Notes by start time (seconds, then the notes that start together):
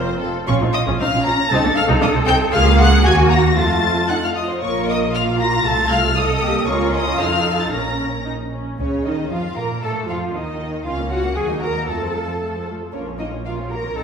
Already playing: F1 F2 C4 F4 C5
0.20 A4
0.47 A#1 C#4 F4 C#5 C#6
0.61 A#1 C4 D#4
0.73 D#5 D#6
0.87 A#1 C#4 F4
0.99 A#1 C4 C#4 D#4 F5 F6
1.13 A#1 C#4 F4
1.23 A#1 C#4 F4 A#5 A#6
1.49 C2 C4 D#4 A4 A5 A6
1.64 C2 A#3 D4
1.75 F5 F6
1.88 C2 C4 D#4
2.01 C2 A#3 D4 D#5 D#6
2.14 C2 C4 D#4
2.26 C2 C4 D#4 G5 G6
2.52 C#2 A#3 F4 G#4 F5 F6
2.77 F#5 F#6
3.04 D#2 A#3 F#4 G#5 G#6
3.28 A#5 A#6
3.56 F2 A3 F4 A5 A6
4.08 D#4 F#5 F#6
4.23 F5 F6
4.35 F4 D#5 D#6
4.48 C5 C6
4.60 A#1 A#3 F4 A#4 C#5 C#6
4.87 D#5 D#6
5.13 A#3 F4 F5 F6
5.39 F#4 A#5 A#6
5.65 C2 A3 A4 A5 A6
5.90 F5 F6
6.17 A3 A4 D#5 D#6
6.42 A#3 G4
6.67 C#2 C#4 F4 A#4 C#5 C#6
6.93 D#5 D#6
7.18 F2 D#4 A4 F5 F6
7.59 A5 A6
7.71 A#1 C#4 A#4 A#5 A#6
8.25 D#4
8.52 C#4
8.79 C#2 C#3 C#4 C#5
9.05 D#2 D#3 D#4 D#5
9.30 F2 F3 F4 F5
9.56 A#2 A#3 A#4 A#5
9.82 A2 A3 A4 A5
10.08 F2 F3 F4 F5
10.34 D#2 D#3 D#4 D#5
10.84 C#2 C#4 F4 C#5 F5
10.98 A#3 C#4 F5
11.11 C#4 F4 F#4 C#5 F#5
11.23 A#3 C#4 F5
11.36 D#2 F#3 F#4 G#4 F#5 G#5
11.49 A#3 D#4 D#5
11.61 F#3 F#4 A#4 F#5 A#5
11.76 A#3 D#4 D#5
11.88 F2 A3 F4 A4 A5
12.02 F3 A4 C5
12.14 A3 F4 A4
12.28 F3 A4 C5
12.40 A3 F4 A4
12.54 F3 A4 C5
12.67 A3 F4 A4
12.80 F3 A4 C5
12.92 A#1 A#3 C#4 F4 A#4 C#5
13.07 F3 C#4 C#5
13.19 A#3 D#4 F4 A#4 D#5
13.32 F3 C#4 C#5
13.45 A#3 F4 A#4 F5
13.57 F3 C#4 C#5
13.70 A#3 F4 A#4 A#5
13.83 F3 C#4 C#5
13.96 C2 C4 D#4 A4 A5